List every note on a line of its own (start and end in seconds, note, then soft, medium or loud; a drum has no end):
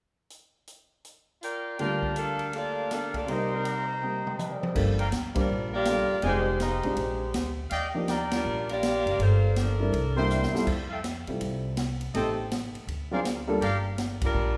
0.30 closed hi-hat soft
0.67 closed hi-hat medium
1.05 closed hi-hat soft
1.43 1.77 F4 medium
1.43 1.77 A#4 medium
1.43 1.77 D5 medium
1.43 1.77 G5 medium
1.43 closed hi-hat medium
1.79 3.27 D2 soft
1.79 3.27 D3 soft
1.79 3.26 G3 soft
1.79 3.28 A#3 soft
1.79 3.27 D4 medium
1.79 2.14 F4 medium
1.79 3.28 F4 soft
1.79 3.28 G4 medium
1.79 2.14 A#4 medium
1.79 2.13 D5 medium
1.79 3.27 F5 medium
1.79 3.26 G5 medium
1.79 2.14 G5 medium
1.79 3.27 A5 medium
1.79 ride soft
2.03 kick soft
2.16 2.51 D4 medium
2.16 2.51 A4 medium
2.16 2.50 A#4 medium
2.16 2.51 F5 medium
2.16 hi-hat pedal soft
2.16 ride medium
2.39 ride soft
2.53 2.90 A#3 medium
2.53 2.91 F4 medium
2.53 2.91 A4 medium
2.53 2.91 D5 medium
2.53 ride soft
2.91 3.15 D4 medium
2.91 3.14 A4 medium
2.91 3.15 A#4 medium
2.91 3.15 F5 medium
2.91 cross-stick medium
2.91 snare soft
2.91 hi-hat pedal medium
2.91 ride medium
3.14 3.28 A#3 medium
3.14 3.29 F4 medium
3.14 3.28 A4 medium
3.14 3.28 D5 medium
3.14 kick soft
3.14 ride soft
3.26 4.75 C3 soft
3.26 4.00 G3 soft
3.26 4.76 D#4 soft
3.26 3.52 G4 medium
3.26 4.76 C5 medium
3.26 3.52 C5 medium
3.26 4.50 D5 soft
3.26 4.00 D#5 medium
3.26 4.00 G5 medium
3.26 4.75 A#5 medium
3.26 ride medium
3.30 3.52 A#3 medium
3.30 3.52 D#4 medium
3.30 4.77 A#4 medium
3.54 3.89 G3 medium
3.54 3.90 C4 medium
3.54 3.89 D#4 medium
3.54 3.89 A#4 medium
3.65 hi-hat pedal soft
3.65 ride medium
4.01 4.72 G3 soft
4.01 4.73 A#3 soft
4.01 4.76 C4 soft
4.01 4.75 D#5 medium
4.01 4.75 G5 medium
4.01 mid tom soft
4.05 4.77 G4 soft
4.27 4.45 G5 soft
4.27 mid tom medium
4.39 4.61 D#5 soft
4.39 hi-hat pedal medium
4.39 high tom medium
4.51 4.70 D5 soft
4.62 4.81 C5 soft
4.62 high tom medium
4.74 5.10 G1 medium
4.74 4.96 G3 soft
4.74 4.96 A#3 medium
4.74 4.96 D4 soft
4.74 4.96 F4 soft
4.74 4.97 A4 medium
4.74 kick medium
4.74 crash medium
4.98 5.07 D5 medium
4.98 5.08 F5 medium
4.98 5.08 G5 medium
4.98 5.08 A#5 medium
4.98 ride soft
5.12 5.47 D2 medium
5.12 snare medium
5.12 hi-hat pedal medium
5.12 ride medium
5.35 5.47 G3 medium
5.35 5.71 G3 medium
5.35 5.47 A#3 medium
5.35 5.48 D4 medium
5.35 5.71 D4 medium
5.35 5.48 F4 medium
5.35 5.71 F4 medium
5.35 5.71 A#4 medium
5.35 5.48 C5 medium
5.35 kick medium
5.35 ride medium
5.49 6.06 A#1 medium
5.74 6.21 A#3 medium
5.74 6.21 F4 loud
5.74 6.20 G4 medium
5.74 6.21 D5 loud
5.85 6.08 G3 soft
5.85 6.08 A#3 soft
5.85 6.08 D4 soft
5.85 6.08 F4 soft
5.85 6.08 A4 soft
5.85 snare medium
5.85 hi-hat pedal medium
5.85 ride medium
6.22 6.80 F1 medium
6.22 6.44 G#3 medium
6.22 6.44 C4 medium
6.22 6.45 D#4 soft
6.22 6.45 F4 medium
6.22 6.45 G4 medium
6.22 6.38 D#5 medium
6.22 6.38 F5 medium
6.22 6.38 G5 medium
6.22 6.38 G#5 medium
6.22 ride medium
6.26 6.59 G#3 medium
6.26 6.59 D#4 medium
6.26 6.59 G4 medium
6.26 6.59 C5 loud
6.59 7.55 G#3 medium
6.59 6.96 D#4 medium
6.59 7.55 G4 medium
6.59 7.55 C5 medium
6.59 6.97 D#5 medium
6.59 6.97 F5 medium
6.59 6.97 G5 medium
6.59 6.97 A#5 medium
6.59 snare medium
6.59 hi-hat pedal soft
6.59 ride medium
6.83 6.96 A1 medium
6.83 6.96 G#3 medium
6.83 6.96 C4 soft
6.83 6.96 D4 soft
6.83 6.96 F4 soft
6.83 6.97 G4 soft
6.83 ride soft
6.96 7.31 A#1 medium
6.96 ride medium
7.34 7.69 D2 medium
7.34 snare medium
7.34 hi-hat pedal medium
7.34 ride medium
7.70 8.41 D#2 medium
7.70 7.87 D5 medium
7.70 7.87 D#5 medium
7.70 7.87 F5 medium
7.70 7.87 G5 loud
7.70 ride medium
7.94 8.07 F3 medium
7.94 8.07 A#3 soft
7.94 8.07 D4 soft
7.94 8.07 D#4 medium
7.94 8.07 G4 medium
8.08 8.64 D5 medium
8.08 8.64 F5 medium
8.08 8.64 G5 medium
8.08 8.64 A#5 medium
8.08 snare medium
8.08 hi-hat pedal medium
8.08 ride medium
8.31 8.67 G3 medium
8.31 8.67 D4 medium
8.31 8.67 F4 medium
8.31 8.67 A#4 medium
8.31 snare medium
8.31 ride medium
8.45 9.01 A#1 medium
8.69 9.19 A#3 loud
8.69 9.19 F4 medium
8.69 9.20 G4 loud
8.69 9.20 D5 loud
8.69 ride soft
8.83 snare medium
8.83 hi-hat pedal medium
8.83 ride medium
9.06 9.18 F#1 medium
9.06 ride soft
9.19 9.89 G1 medium
9.19 9.57 A#3 medium
9.19 9.57 F4 medium
9.19 9.57 A4 medium
9.19 9.57 C5 medium
9.19 ride medium
9.56 9.92 F3 medium
9.56 10.51 D4 medium
9.56 10.51 A4 medium
9.56 10.51 A#4 medium
9.56 snare medium
9.56 hi-hat pedal soft
9.56 ride medium
9.79 9.91 G3 medium
9.79 9.91 C4 soft
9.79 9.91 D4 soft
9.79 9.92 E4 medium
9.79 9.92 A#4 medium
9.92 10.49 C2 medium
9.92 ride medium
10.16 10.51 G3 medium
10.16 10.51 A#3 medium
10.16 10.51 C4 medium
10.16 10.51 D4 medium
10.16 10.51 E4 medium
10.16 10.64 C5 medium
10.16 10.64 E5 medium
10.16 10.64 G5 medium
10.16 10.64 C6 medium
10.30 hi-hat pedal medium
10.43 snare medium
10.53 10.65 G3 medium
10.53 10.66 C4 medium
10.53 10.66 E4 medium
10.53 10.66 F4 medium
10.53 10.66 A4 medium
10.53 muted upright bass stroke soft
10.53 snare medium
10.67 11.23 F2 medium
10.67 kick medium
10.67 crash medium
10.90 10.99 A4 medium
10.90 10.99 E5 medium
10.90 10.99 F5 medium
10.90 10.99 G5 medium
11.04 snare medium
11.04 hi-hat pedal medium
11.04 ride medium
11.27 11.40 C3 medium
11.27 11.75 G3 soft
11.27 11.75 C4 soft
11.27 11.76 E4 soft
11.27 11.75 F4 soft
11.27 11.76 A4 soft
11.27 ride soft
11.40 12.10 C2 medium
11.40 ride medium
11.77 snare medium
11.77 hi-hat pedal soft
11.77 ride medium
12.01 ride soft
12.14 12.70 A1 medium
12.14 12.35 A3 medium
12.14 12.35 C4 medium
12.14 12.36 D#4 medium
12.14 12.36 G4 medium
12.14 12.30 A4 medium
12.14 12.36 A4 medium
12.14 12.31 C5 medium
12.14 12.30 D#5 medium
12.14 12.30 G5 medium
12.14 ride medium
12.51 snare medium
12.51 hi-hat pedal soft
12.51 ride medium
12.74 muted upright bass stroke soft
12.74 ride soft
12.87 13.58 D2 medium
12.87 ride medium
13.11 13.23 F#3 medium
13.11 13.24 C4 medium
13.11 13.23 D4 medium
13.11 13.24 F4 medium
13.11 13.24 G#4 medium
13.11 13.21 A#4 medium
13.11 13.21 C5 medium
13.11 13.21 D5 medium
13.11 13.20 F5 medium
13.25 snare medium
13.25 hi-hat pedal medium
13.25 ride medium
13.47 13.60 G3 medium
13.47 13.60 A#3 medium
13.47 13.61 D4 medium
13.47 13.60 F4 medium
13.47 13.61 A4 medium
13.61 14.31 G1 medium
13.61 13.77 G4 medium
13.61 13.77 A#4 medium
13.61 13.77 D5 medium
13.61 13.77 F5 loud
13.61 ride medium
13.98 snare medium
13.98 hi-hat pedal soft
13.98 ride medium
14.21 14.57 G3 medium
14.21 14.57 D4 medium
14.21 14.57 F4 medium
14.21 14.57 A#4 medium
14.21 kick medium
14.21 ride medium
14.34 14.57 A#1 medium